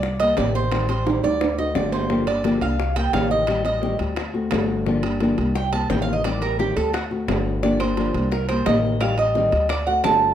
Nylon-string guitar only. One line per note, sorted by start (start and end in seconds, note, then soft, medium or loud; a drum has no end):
0.02 muted nylon-string guitar stroke medium
0.20 0.36 A#3 soft
0.20 0.37 C4 soft
0.20 0.37 G4 soft
0.37 0.71 C3 medium
0.37 0.70 D#3 medium
0.37 0.71 A#3 medium
0.37 0.71 C4 medium
0.37 0.72 G4 medium
0.72 0.88 D#3 medium
0.72 0.89 G3 medium
0.72 0.89 C4 medium
0.72 0.88 G4 medium
0.89 1.05 G3 soft
0.89 1.06 C4 soft
0.89 1.06 G4 soft
1.06 1.23 D#3 medium
1.06 1.23 G3 medium
1.06 1.22 C4 medium
1.06 1.22 G4 medium
1.23 1.41 G3 soft
1.23 1.40 C4 soft
1.23 1.40 G4 soft
1.41 muted nylon-string guitar stroke medium
1.58 1.74 A3 soft
1.58 1.75 C4 soft
1.58 1.75 F#4 soft
1.75 2.08 D3 medium
1.75 2.09 A3 medium
1.75 2.10 C4 medium
1.75 2.10 F#4 medium
2.09 2.26 D3 medium
2.09 2.26 F3 medium
2.09 2.27 A#3 medium
2.09 2.27 D4 medium
2.09 2.26 G4 medium
2.27 2.44 A#3 soft
2.27 2.44 D4 soft
2.27 2.44 G4 soft
2.44 2.61 D3 medium
2.44 2.61 F3 medium
2.44 2.61 A#3 medium
2.44 2.62 D4 medium
2.44 2.61 G4 medium
2.62 2.78 A#3 soft
2.62 2.79 D4 soft
2.62 2.78 G4 soft
2.79 muted nylon-string guitar stroke medium
2.96 3.12 A#3 soft
2.96 3.13 C4 soft
2.96 3.13 G4 medium
3.13 3.47 C3 medium
3.13 3.46 D#3 medium
3.13 3.47 A#3 medium
3.13 3.47 C4 medium
3.13 3.48 G4 medium
3.48 3.64 D#3 medium
3.48 3.65 G3 medium
3.48 3.64 C4 medium
3.48 3.63 G4 medium
3.64 3.81 G3 soft
3.64 3.82 C4 soft
3.64 3.81 G4 soft
3.81 3.99 D#3 medium
3.81 3.99 G3 medium
3.81 3.99 C4 medium
3.81 3.98 G4 medium
3.99 4.17 G3 soft
3.99 4.16 C4 soft
3.99 4.16 G4 soft
4.17 muted nylon-string guitar stroke medium
4.34 4.50 A3 soft
4.34 4.51 C4 soft
4.34 4.51 F#4 soft
4.51 4.85 D3 medium
4.51 4.86 A3 medium
4.51 4.86 C4 medium
4.51 4.86 F#4 medium
4.86 5.03 D3 medium
4.86 5.03 F3 medium
4.86 5.03 A#3 medium
4.86 5.03 D4 medium
4.86 5.02 G4 medium
5.03 5.21 A#3 soft
5.03 5.20 D4 soft
5.03 5.20 G4 soft
5.21 5.37 D3 medium
5.21 5.38 F3 medium
5.21 5.38 A#3 medium
5.21 5.38 D4 medium
5.21 5.37 G4 medium
5.38 5.55 A#3 soft
5.38 5.55 D4 soft
5.38 5.55 G4 soft
5.55 muted nylon-string guitar stroke medium
5.72 5.89 A#3 soft
5.72 5.89 C4 soft
5.72 5.89 G4 soft
5.90 6.24 C3 medium
5.90 6.23 D#3 medium
5.90 6.24 A#3 medium
5.90 6.24 C4 medium
5.90 6.24 G4 medium
6.24 6.41 D#3 medium
6.24 6.41 G3 medium
6.24 6.41 C4 medium
6.24 6.41 G4 medium
6.42 6.58 G3 soft
6.42 6.58 C4 soft
6.42 6.58 G4 soft
6.59 6.75 D#3 medium
6.59 6.76 G3 medium
6.59 6.76 C4 medium
6.59 6.75 G4 medium
6.76 6.94 G3 soft
6.76 6.93 C4 soft
6.76 6.93 G4 soft
6.94 muted nylon-string guitar stroke medium
7.11 7.28 A3 soft
7.11 7.28 C4 soft
7.11 7.27 F#4 soft
7.28 7.61 D3 medium
7.28 7.62 A3 medium
7.28 7.63 C4 medium
7.28 7.63 F#4 medium
7.63 7.79 D3 medium
7.63 7.80 F3 medium
7.63 7.80 A#3 medium
7.63 7.80 D4 medium
7.63 7.79 G4 medium
7.81 7.97 A#3 soft
7.81 7.97 D4 soft
7.81 7.97 G4 soft
7.97 8.14 D3 medium
7.97 8.14 F3 medium
7.97 8.14 A#3 medium
7.97 8.14 D4 medium
7.97 8.13 G4 medium
8.15 8.31 A#3 soft
8.15 8.32 D4 soft
8.15 8.31 G4 soft
8.32 muted nylon-string guitar stroke medium
8.49 8.66 A#3 soft
8.49 8.66 C4 soft
8.49 8.66 G4 soft
8.66 9.00 C3 medium
8.66 8.99 D#3 medium
8.66 9.01 A#3 medium
8.66 9.01 C4 medium
8.66 9.01 G4 medium
9.01 9.17 D#3 medium
9.01 9.18 G3 medium
9.01 9.18 C4 medium
9.01 9.17 G4 medium
9.18 9.35 G3 soft
9.18 9.35 C4 soft
9.18 9.35 G4 soft
9.35 9.52 D#3 medium
9.35 9.52 G3 medium
9.35 9.52 C4 medium
9.35 9.51 G4 medium
9.53 9.70 G3 soft
9.53 9.69 C4 soft
9.53 9.69 G4 soft
9.70 muted nylon-string guitar stroke medium
9.87 10.04 A3 soft
9.87 10.04 C4 soft
9.87 10.04 F#4 medium
10.05 10.34 D3 medium
10.05 10.34 A3 medium
10.05 10.34 C4 medium
10.05 10.34 F#4 medium